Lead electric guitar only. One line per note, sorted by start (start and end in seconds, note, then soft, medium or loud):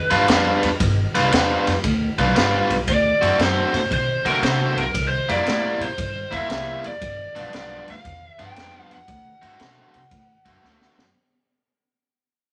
0.00 0.25 B4 loud
2.89 3.42 D5 medium
3.41 3.88 C5 medium
3.93 4.24 C5 medium
4.28 4.44 A#4 medium
4.44 4.75 C5 medium
4.79 5.08 A#4 medium
5.08 5.31 C5 medium
5.31 5.83 D5 medium
5.82 6.34 C5 medium
6.34 6.81 E5 loud
6.86 7.54 D5 loud
7.56 7.90 D5 loud
7.90 8.28 F5 loud
8.28 8.42 E5 loud
8.41 8.93 G5 loud
8.93 10.95 F#5 loud